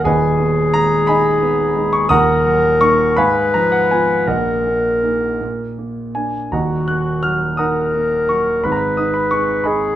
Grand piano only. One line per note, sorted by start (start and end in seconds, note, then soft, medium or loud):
0.05 2.06 D#1 medium
0.05 2.07 D#2 medium
0.05 0.71 B4 medium
0.05 0.71 D#5 medium
0.05 0.75 G#5 medium
0.40 0.95 B3 soft
0.74 1.29 G#3 soft
0.74 1.09 A#5 loud
1.07 1.63 D#4 medium
1.07 1.90 D#5 medium
1.07 1.90 G#5 medium
1.07 1.93 B5 loud
1.42 1.97 B3 medium
1.76 2.11 G#3 medium
1.93 2.11 C#6 medium
2.09 3.14 D#1 medium
2.09 3.14 D#2 medium
2.09 2.77 F#5 medium
2.09 2.77 A#5 medium
2.09 2.81 D#6 loud
2.46 3.03 F#3 medium
2.81 3.14 A#3 soft
2.81 3.14 D#4 medium
2.81 3.18 C#6 loud
3.17 4.25 G#2 medium
3.17 3.52 F5 medium
3.17 3.52 G#5 medium
3.17 3.54 B5 loud
3.54 4.14 F3 soft
3.54 3.73 A#5 medium
3.72 3.91 F#5 medium
3.91 4.25 B3 soft
3.91 4.25 F4 soft
3.91 4.28 G#5 medium
4.27 5.36 A#1 soft
4.27 5.37 A#2 medium
4.27 5.36 A#4 medium
4.27 5.36 D#5 medium
4.27 5.40 F#5 medium
4.66 5.02 A#3 soft
5.04 5.37 A#3 soft
5.04 5.37 D#4 soft
5.41 6.48 A#2 soft
5.78 6.14 A#3 soft
6.15 6.48 A#3 soft
6.15 6.49 D4 soft
6.15 6.52 G#5 medium
6.52 8.60 D#1 soft
6.52 8.61 D#2 medium
6.52 6.86 D#5 soft
6.52 6.86 F#5 medium
6.52 6.88 A#5 medium
6.88 7.45 A#3 soft
6.88 7.23 F#6 medium
7.23 7.80 F#3 soft
7.23 7.58 F6 medium
7.57 8.15 D#4 soft
7.57 8.25 F#5 medium
7.57 8.25 A#5 medium
7.57 8.28 D#6 medium
7.94 8.50 A#3 soft
8.29 8.65 F#3 soft
8.29 8.64 C#6 medium
8.64 9.96 G#1 medium
8.64 9.96 G#2 medium
8.64 8.71 B5 medium
8.72 8.78 A#5 medium
8.77 8.98 B5 medium
8.97 9.53 D#4 soft
8.97 9.15 D#6 medium
9.14 9.32 B5 medium
9.31 9.86 G#3 soft
9.31 9.66 C#6 medium
9.64 9.96 D#4 soft
9.64 9.96 D#5 medium
9.64 9.96 G#5 medium
9.64 9.96 B5 medium